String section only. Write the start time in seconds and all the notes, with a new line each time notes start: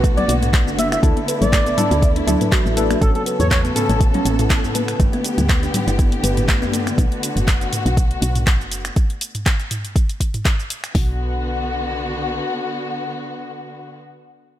Already playing: D3 B3 F#4
1.03 A3 E4
3.02 C#3 B3 A4
5.00 D3 G4
6.98 F#4
10.95 D3 B3 F#4